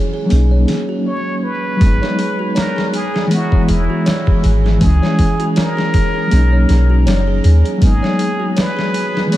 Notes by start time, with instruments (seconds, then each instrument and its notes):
Already playing: reed electric piano E3 G#3 C#4 E4, music box G#4
0.14 music box G#4
0.25 reed electric piano F#3 A#3
0.30 808-style bass B1, reed electric piano C#4, music box G#4, open hi-hat
0.36 reed electric piano D#4
0.51 music box C#5
0.68 music box G#4, snare, open hi-hat
0.89 music box F#4
1.07 muted trumpet C#5
1.44 muted trumpet B4
1.76 reed electric piano F#3 G#3
1.81 808-style bass G#1, reed electric piano B3, music box G#4, kick, open hi-hat
1.86 reed electric piano D#4
2.02 music box C#5, snare
2.18 music box G#4, open hi-hat
2.39 music box F#4
2.55 muted trumpet A#4, music box C#5, snare, open hi-hat
2.76 music box G#4, snare
2.93 music box G#4, muted trumpet G#4, open hi-hat
3.14 music box G#4, snare
3.27 reed electric piano E3 G#3, music box G#4, open hi-hat
3.33 reed electric piano B3 E4, muted trumpet F#4
3.52 music box C#5, kick
3.68 808-style bass E1, muted trumpet E4, music box G#4, open hi-hat
3.90 music box F#4
4.06 music box C#5, snare, open hi-hat
4.27 music box G#4, kick
4.43 808-style bass G#1, music box G#4, open hi-hat
4.65 music box G#4, snare
4.77 reed electric piano E3 G#3, music box G#4, kick, open hi-hat
4.82 808-style bass C#2, reed electric piano C#4, muted trumpet G#4
4.87 reed electric piano E4
5.02 music box C#5, snare
5.19 music box G#4, kick, open hi-hat
5.40 music box F#4, closed hi-hat
5.56 muted trumpet A#4, music box C#5, snare, open hi-hat
5.77 music box G#4, snare
5.94 music box G#4, kick, open hi-hat
6.15 music box G#4
6.27 reed electric piano F#3 A#3
6.31 808-style bass B1, reed electric piano C#4, music box G#4, open hi-hat
6.37 reed electric piano D#4
6.53 music box C#5
6.69 808-style bass B1, music box G#4, snare, open hi-hat
6.90 music box F#4
7.06 808-style bass F#1, music box C#5, snare, open hi-hat
7.27 music box G#4
7.44 808-style bass D#2, music box G#4, open hi-hat
7.65 music box G#4, closed hi-hat
7.77 reed electric piano F#3 G#3
7.82 808-style bass G#1, reed electric piano B3, music box G#4, muted trumpet G#4, kick, open hi-hat
7.87 reed electric piano D#4
8.02 music box C#5, snare
8.19 music box G#4, open hi-hat
8.40 music box F#4
8.56 muted trumpet B4, music box C#5, snare, open hi-hat
8.77 music box G#4, snare
8.94 music box G#4, open hi-hat
9.15 music box G#4, snare
9.27 reed electric piano E3 G#3
9.32 reed electric piano B3, music box G#4, muted trumpet C#5, open hi-hat